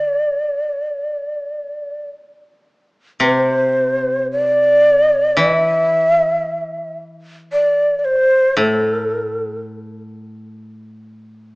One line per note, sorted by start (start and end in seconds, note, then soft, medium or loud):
0.00 2.07 D4 medium
0.00 2.06 D5 medium
3.20 5.38 C3 soft
3.20 4.27 C5 medium
4.32 5.36 D5 medium
5.37 8.58 E3 soft
5.37 6.96 E5 medium
7.52 7.99 D5 medium
7.99 8.06 D5 soft
8.05 8.58 C5 medium
8.57 11.55 A2 soft
8.57 9.58 A4 medium